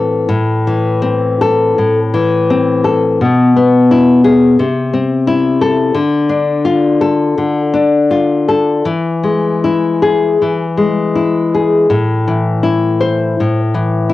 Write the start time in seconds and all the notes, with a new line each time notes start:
Already playing: A2 E3 C4 A4
0.29 A2
0.67 E3
1.02 C4
1.41 A4
1.78 A2
2.14 E3
2.50 C4
2.84 A4
3.21 B2
3.57 B3
3.91 E4
4.24 G#4
4.59 C3
4.93 C4
5.27 E4
5.61 A4
5.95 D3
6.29 D4
6.65 F4
7.01 A4
7.38 D3
7.74 D4
8.11 F4
8.48 A4
8.85 E3
9.23 G#3
9.64 E4
10.02 G#4
10.42 E3
10.77 G#3
11.15 E4
11.54 G#4
11.90 A2
12.28 E3
12.63 E4
13.00 C5
13.40 A2
13.74 E3
14.09 E4